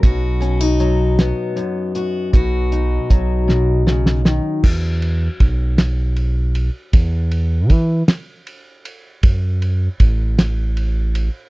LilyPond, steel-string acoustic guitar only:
\new Staff \with { instrumentName = "Steel-string acoustic guitar" } { \clef bass \time 6/8 \key b \dorian \tempo 4. = 52 << { fis'8 cis'16 dis'8. b4 fis'8 | fis'8 dis'2~ dis'8 | r2. | r2. |
r2. | } \\ { b,4 fis4 fis,4 | b,4 fis8 b,8 cis8 dis8 | r2. | r2. |
r2. | } >> }